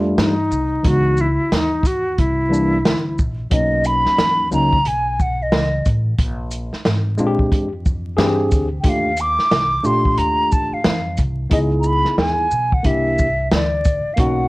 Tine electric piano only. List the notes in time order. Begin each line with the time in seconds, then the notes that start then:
Already playing: G3 A3 D4 F4
0.83 E3 G#3 B3 D#4
2.49 E3 G3 A#3 D4
3.50 F#3 A#3 C#4 D#4
4.51 F#3 A#3 C#4 D#4
7.17 G#3 C4 D4 F4
7.27 G4
8.17 C4 D4 G4 G#4
8.83 A3 D4 F4 G4
9.83 A3 D4 F4 G4
11.49 B3 D#4 E4 G#4
12.83 A#3 D4 E4 G4
14.17 A#3 C#4 D#4 F#4